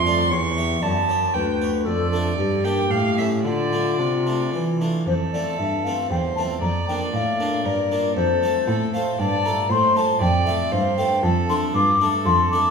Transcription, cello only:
Already playing: F2
0.31 E2
0.83 F#2
1.35 D2
1.87 F2
2.38 G2
2.90 A2
3.44 D3
3.99 C3
4.53 E3
5.06 F2
5.59 G2
6.11 E2
6.62 F2
7.13 A2
7.65 G2
8.16 F2
8.68 A2
9.19 G2
9.70 A2
10.21 F2
10.72 G2
11.24 F2
11.74 G2
12.26 F2

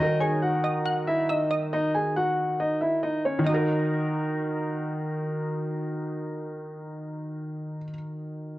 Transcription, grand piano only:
0.00 D#4 D#5
0.20 G#4 G#5
0.42 F#4 F#5
1.07 E4 E5
1.29 D#4 D#5
1.73 D#4 D#5
1.95 G#4 G#5
2.16 F#4 F#5
2.60 D#4 D#5
2.81 E4 E5
3.03 D#4 D#5
3.25 C#4 C#5
3.47 D#4

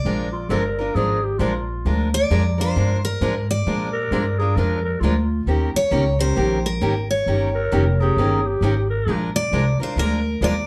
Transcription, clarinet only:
0.33 F4
0.49 A#4
0.95 G#4
1.24 G4
1.39 F4
3.93 A#4
4.39 G#4
4.56 A#4
4.85 A#4
5.01 F4
7.55 A#4
8.00 G#4
8.45 G4
8.90 A#4

